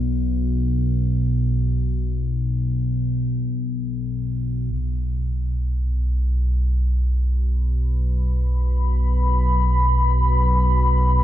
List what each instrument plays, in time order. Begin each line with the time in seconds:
Already playing: synth drone B1 B2
4.75 synth drone B1 B2, ambient pad F#3
4.95 ambient pad F#4
6.88 ambient pad B4
6.97 ambient pad B5